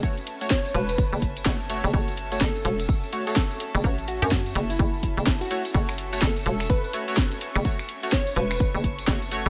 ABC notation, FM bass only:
X:1
M:4/4
L:1/16
Q:"Swing 16ths" 1/4=126
K:F#m
V:1 name="FM bass" clef=bass
z6 E,,,3 F,,,3 F,,,3 F,,, | F,,,4 F,,,2 E,,,3 z6 F,,, | A,,,3 F,,3 F,,,2 F,,,3 F,,,2 z3 | F,,,4 F,,,2 E,,,3 z6 F,,, |
z6 E,,,3 F,,,3 F,,,3 z |]